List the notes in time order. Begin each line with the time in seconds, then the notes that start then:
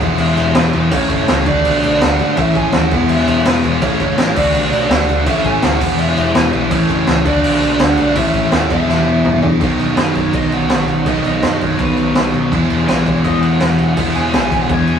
Already playing: F#5
0.00 E1 E2 B2 E3 G#3 B3, kick, crash
0.04 E4
0.18 E1 E5, crash
0.37 E1, crash
0.54 E1 B4, snare, crash
0.73 E1 E2 B2 E3, crash
0.91 A1 A2 E3 A3 C#4 E4 C#5, kick, crash
1.09 F#1 C#5, kick, crash
1.28 C#2, snare, crash
1.46 D2 D3 A3 D4 F#4 D5, kick, crash
1.65 B1, crash
1.83 B1, crash
2.01 D2 F#5, snare, crash
2.19 G#1 D3 A3 D4, crash
2.36 A1 A2 E3 A3 C#4 E4 E5, kick, crash
2.55 A1 G#5, kick, crash
2.72 D#2 F#5, snare, crash
2.91 E1 E2 B2 E3 G#3 B3 E4, kick, crash
3.09 E1 E5, crash
3.27 E1, crash
3.45 E1 B4, snare, crash
3.64 E1 E2 B2 E3, crash
3.82 A1 A2 E3 A3 C#4 E4 C#5, kick, crash
4.00 F#1 C#5, kick, crash
4.18 A1, snare, crash
4.36 D2 D3 A3 D4 F#4 D5, kick, crash
4.54 B1, crash
4.72 B1, crash
4.90 D2 F#5, snare, crash
5.07 D2 D3 A3 D4, crash
5.25 A1 A2 E3 A3 C#4 E4 E5, kick, crash
5.44 A1 G#5, kick, crash
5.62 D2 F#5, snare, crash
5.79 E1 E2 B2 E3 G#3 B3 E4, kick, crash
5.99 E1 E5, crash
6.17 E1, crash
6.35 E1 B4, snare, crash
6.52 B1 E2 B2 E3, crash
6.71 A1 A2 E3 A3 C#4 E4 C#5, kick, crash
6.89 F#1 C#5, kick, crash
7.07 C#2, snare, crash
7.25 D2 D3 A3 D4 F#4 D5, kick, crash
7.44 B1, crash
7.62 B1, crash
7.79 D2 F#5, snare, crash
7.96 B1 D3 A3 D4, crash
8.01 D5
8.15 A1 A2 E3 A3 C#4 E4 E5, kick, crash
8.33 A1, kick, crash
8.52 D#2 F#5, snare, crash
8.70 E1 E2 B2 E3 G#3 B3 E4 E5, kick, crash
8.88 E1, snare
9.07 E1
9.24 E1, mid tom
9.42 E1 E2 B2 E3, floor tom
9.60 B1 B2 D#3 F#3 B3 D#4, kick, crash
9.79 B1, crash
9.97 F#2 B4, snare, crash
10.15 F#2 C#5, kick, crash
10.33 B1 B2 F#3 B3 D#5, kick, crash
10.52 F#5, crash
10.68 B1 F#5, snare, crash
10.87 B1, crash
11.06 B1 B2 D#3 F#3 B3 D#4 D#5, kick, crash
11.24 B1 D#5, crash
11.42 F#2, snare, crash
11.61 F#2 C#5, kick, crash
11.78 B1 B2 F#3 B3, kick, crash
11.83 B4
11.97 crash
12.15 B1, snare, crash
12.34 B1, crash
12.51 E1 E2 B2 E3 G#3 B3 E4, kick, crash
12.70 E1, crash
12.87 B1 B4, snare, crash
13.06 B1 C#5, kick, crash
13.24 E1 E2 B2 E3 D#5, kick, crash
13.42 F#5, crash
13.60 E1, snare, crash
13.78 E1, crash
13.89 F#5
13.96 E1 E2 B2 E3 G#3 B3 E4, kick, crash
14.15 E1 G#5, crash
14.33 B1 G#5, snare, crash
14.52 B1, kick, crash
14.62 F#5
14.69 E1 E2 B2 E3 G#5, kick, crash
14.87 crash